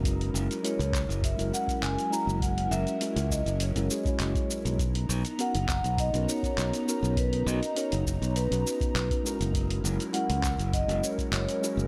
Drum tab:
HH |xx-xxx-xxx-xxx--|xx-xxx-xxx-xxx-x|xx-xxx-xxx-xxx--|xx-xxx-xxx-xxx-x|
SH |x-xxxxxxxxxxxxxx|x-xxxxxxxxxxxxxx|x-xxxxxxxxxxxxxx|x-xxxxxxxxxxxxxx|
CP |------x-----x---|------------x---|------x-----x---|------------x---|
BD |o-----o-o--o----|o-----o----o-o--|o-----o-o--o----|o-----o----o-o--|

HH |xx-xxx-xxx-xxx--|
SH |x-xxxxxxxxxxxxxx|
CP |------x-----x---|
BD |o-----o-o--o----|